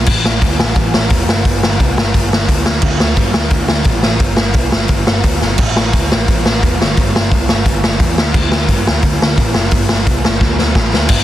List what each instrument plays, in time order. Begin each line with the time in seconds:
0.06 picked electric bass A1, kick, crash
0.25 picked electric bass A1, snare
0.42 picked electric bass D2, kick, open hi-hat
0.59 picked electric bass A1, snare
0.75 picked electric bass A1, kick, open hi-hat
0.94 picked electric bass A1, snare
1.10 picked electric bass E1, kick, open hi-hat
1.29 picked electric bass G1, snare
1.45 picked electric bass G1, kick, open hi-hat
1.63 picked electric bass G1, snare
1.80 picked electric bass C2, kick, open hi-hat
1.98 picked electric bass G1, snare
2.14 picked electric bass G1, kick, open hi-hat
2.33 picked electric bass G1, snare
2.49 picked electric bass D2, kick, open hi-hat
2.66 picked electric bass D2, snare
2.82 picked electric bass D2, kick, crash
3.00 picked electric bass D2, snare
3.16 picked electric bass G2, kick, open hi-hat
3.34 picked electric bass D2, snare
3.50 picked electric bass D2, kick, open hi-hat
3.68 picked electric bass D2, snare
3.84 picked electric bass A1, kick, open hi-hat
4.03 picked electric bass A1, snare
4.20 picked electric bass G1, kick, open hi-hat
4.37 picked electric bass G1, snare
4.54 picked electric bass C2, kick, open hi-hat
4.72 picked electric bass G1, snare
4.88 picked electric bass G1, kick, open hi-hat
5.07 picked electric bass G1, snare
5.24 picked electric bass D2, kick, open hi-hat
5.41 picked electric bass G1, snare
5.58 picked electric bass A1, kick, crash
5.76 picked electric bass A1, snare
5.93 picked electric bass D2, kick, open hi-hat
6.12 picked electric bass A1, snare
6.28 picked electric bass A1, kick, open hi-hat
6.46 picked electric bass A1, snare
6.63 picked electric bass E1, kick, open hi-hat
6.81 picked electric bass G1, snare
6.97 picked electric bass G1, kick, open hi-hat
7.16 picked electric bass G1, snare
7.32 picked electric bass C2, kick, open hi-hat
7.49 picked electric bass G1, snare
7.66 picked electric bass G1, kick, open hi-hat
7.84 picked electric bass G1, snare
8.00 picked electric bass E2, kick, open hi-hat
8.18 picked electric bass D2, snare
8.34 picked electric bass D2, kick, crash
8.52 picked electric bass D2, snare
8.68 picked electric bass G2, kick, open hi-hat
8.87 picked electric bass D2, snare
9.03 picked electric bass D2, kick, open hi-hat
9.22 picked electric bass D2, snare
9.38 picked electric bass A1, kick, open hi-hat
9.54 picked electric bass F#1, snare
9.71 picked electric bass G1, kick, open hi-hat
9.89 picked electric bass G1, snare
10.07 picked electric bass C2, kick, open hi-hat
10.25 picked electric bass G1, snare
10.41 picked electric bass D2, kick, snare
10.58 picked electric bass D2, snare
10.75 picked electric bass A1, kick, snare
10.94 picked electric bass D2, snare
11.09 picked electric bass G1, kick, crash